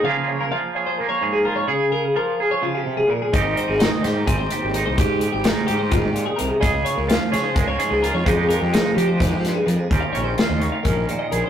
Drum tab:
HH |-------|-------|xxxxxxx|xxxxxxx|
SD |-------|-------|--oo---|--o----|
BD |-------|-------|o---o--|o---o--|

HH |xxxxxxx|xxxxxxx|xxxxxxx|
SD |--oo---|--o-oo-|--o----|
BD |o---o--|o---o--|o---o--|